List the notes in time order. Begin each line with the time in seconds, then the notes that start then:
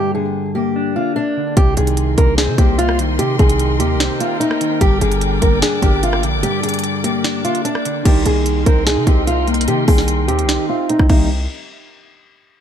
Already playing: G2 D3 A#3 D4 G4
0.15 D3 G#4
0.55 A#3 G4
0.76 D4
0.96 A#3 F4
1.16 D4
1.37 D3
1.57 C2 C3 G4 A#4 D#5 G5 C6, kick, closed hi-hat
1.77 C2 D#3 G#4, closed hi-hat, open hi-hat
1.87 closed hi-hat
1.97 closed hi-hat
2.18 C2 A#3 A#4, kick, closed hi-hat
2.38 C4 G#4, snare, closed hi-hat
2.48 C3
2.58 C2 A#3 G4, kick, closed hi-hat
2.78 F4, closed hi-hat
2.89 cross-stick
2.99 D#3, closed hi-hat
3.19 C3 G4, closed hi-hat
3.39 C2 D#3 G#4, kick, closed hi-hat
3.49 closed hi-hat
3.59 closed hi-hat
3.80 D#2 A#3 G4, closed hi-hat
3.95 C2
4.00 C4, snare, closed hi-hat
4.20 A#3 F4, closed hi-hat
4.40 D#4, closed hi-hat
4.51 cross-stick
4.61 D#3, closed hi-hat
4.81 G1 G2 G4 D5 D6, kick, closed hi-hat
5.01 G1 D3 G#4, closed hi-hat, open hi-hat
5.12 closed hi-hat
5.21 closed hi-hat
5.42 G1 A#3 A#4, kick, closed hi-hat
5.62 D4 G#4, snare, closed hi-hat
5.82 G1 A#3 G4, kick, closed hi-hat
6.03 F4, closed hi-hat
6.13 cross-stick
6.23 A#1 D3, closed hi-hat
6.38 G1
6.43 G2 G4, closed hi-hat
6.63 D3 G#4, closed hi-hat, open hi-hat
6.69 closed hi-hat
6.74 closed hi-hat
6.79 closed hi-hat
6.84 closed hi-hat
7.04 A#3 G4, closed hi-hat
7.24 D4, snare, closed hi-hat
7.45 A#3 F4, closed hi-hat
7.55 closed hi-hat
7.65 D4, closed hi-hat
7.75 cross-stick
7.85 D3, closed hi-hat
8.05 C2 D#3 G4 A#4 D#5 G5 C6, kick, closed hi-hat, crash
8.26 C2 A#3 G#4, closed hi-hat
8.46 closed hi-hat
8.66 C2 C4 A#4, kick, closed hi-hat
8.87 D#4 G#4, snare, closed hi-hat
8.97 C3
9.07 C2 C4 G4, kick, closed hi-hat
9.27 F4, closed hi-hat
9.47 A#3, closed hi-hat
9.54 closed hi-hat
9.61 closed hi-hat
9.68 C3 D#3 G4, closed hi-hat
9.88 C2 G#4, kick, open hi-hat
9.98 snare
10.08 closed hi-hat
10.28 D#2 C4 G4, closed hi-hat
10.39 closed hi-hat
10.44 C2
10.49 D#4, snare, closed hi-hat
10.69 C4 F4
10.89 D#4, closed hi-hat
10.99 C2, kick, cross-stick
11.09 C2 D#3 G3 A#3 C4 D#4 A#4 D#5 G5, kick, crash